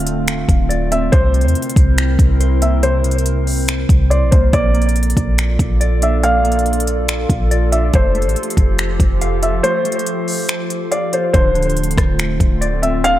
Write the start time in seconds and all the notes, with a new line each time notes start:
Already playing: D1 D3 A3 C4 F4 D5 F5
0.07 closed hi-hat
0.28 finger snap, closed hi-hat
0.49 D1, kick, closed hi-hat
0.69 D5, closed hi-hat
0.92 C4 E5, closed hi-hat
1.12 C2 C3 C4 E4 A#4 C5, kick, closed hi-hat
1.34 C3, closed hi-hat
1.41 E2, closed hi-hat
1.48 closed hi-hat
1.55 closed hi-hat
1.62 closed hi-hat
1.69 closed hi-hat
1.76 C2, kick, closed hi-hat
1.98 finger snap, closed hi-hat
2.19 C2, kick, closed hi-hat
2.40 C5, closed hi-hat
2.62 A#3 E5, closed hi-hat
2.83 C3 C5, closed hi-hat
3.04 C3, closed hi-hat
3.11 closed hi-hat
3.18 closed hi-hat
3.26 closed hi-hat
3.47 open hi-hat
3.68 finger snap, closed hi-hat
3.89 C2, kick, closed hi-hat
4.10 C5 D5, closed hi-hat
4.21 A#1
4.31 C2 A#3 C5, kick, closed hi-hat
4.53 A#1 A#3 F4 A4 D5, kick, closed hi-hat
4.74 A#3, closed hi-hat
4.82 closed hi-hat
4.89 closed hi-hat
4.96 closed hi-hat
5.03 closed hi-hat
5.10 closed hi-hat
5.17 A#1, kick, closed hi-hat
5.38 finger snap, closed hi-hat
5.59 A#1, kick, closed hi-hat
5.81 D5, closed hi-hat
6.02 D4 E5, closed hi-hat
6.23 A#3 F5, closed hi-hat
6.44 A#3, closed hi-hat
6.52 closed hi-hat
6.59 closed hi-hat
6.66 closed hi-hat
6.73 closed hi-hat
6.80 closed hi-hat
6.87 closed hi-hat
7.08 finger snap, closed hi-hat
7.30 A#1, kick, closed hi-hat
7.51 D5, closed hi-hat
7.72 D4 E5, closed hi-hat
7.93 F1 F3 A3 G4 C5, kick, closed hi-hat
8.15 A3, closed hi-hat
8.22 A1, closed hi-hat
8.29 closed hi-hat
8.36 closed hi-hat
8.43 closed hi-hat
8.50 closed hi-hat
8.57 F1, kick, closed hi-hat
8.78 finger snap, closed hi-hat
9.00 F1, kick, closed hi-hat
9.21 F5, closed hi-hat
9.42 F4 E5, closed hi-hat
9.63 A3 C5, closed hi-hat
9.85 A3, closed hi-hat
9.92 closed hi-hat
9.99 closed hi-hat
10.06 closed hi-hat
10.28 open hi-hat
10.49 finger snap, closed hi-hat
10.70 closed hi-hat
10.91 D5 F5, closed hi-hat
11.13 F4 C5, closed hi-hat
11.33 D1 D3 A3 C4 F4 C5, kick, closed hi-hat
11.55 D3, closed hi-hat
11.62 closed hi-hat
11.70 closed hi-hat
11.77 closed hi-hat
11.83 closed hi-hat
11.91 closed hi-hat
11.98 D1, kick, cross-stick, closed hi-hat
12.19 finger snap, closed hi-hat
12.40 D1, kick, closed hi-hat
12.61 D5, closed hi-hat
12.82 C4 E5, closed hi-hat
13.04 D3 F5, closed hi-hat